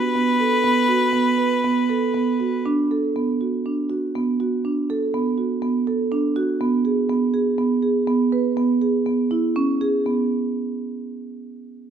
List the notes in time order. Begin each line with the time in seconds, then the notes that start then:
Already playing: B4
0.16 B3
0.40 A4
0.64 B3
0.88 F#4
1.13 B3
1.38 B4
1.64 B3
1.89 A4
2.14 B3
2.40 F#4
2.66 D4
2.91 A4
3.16 B3
3.41 F#4
3.66 D4
3.90 F#4
4.15 B3
4.40 F#4
4.65 D4
4.90 A4
5.14 B3
5.38 F#4
5.62 B3
5.87 A4
6.12 D4
6.36 F#4
6.61 B3
6.85 G#4
7.09 B3
7.34 G#4
7.58 B3
7.82 G#4
8.07 B3
8.32 B4
8.57 B3
8.82 G#4
9.06 B3
9.31 E4
9.56 C#4
9.81 G#4
10.06 B3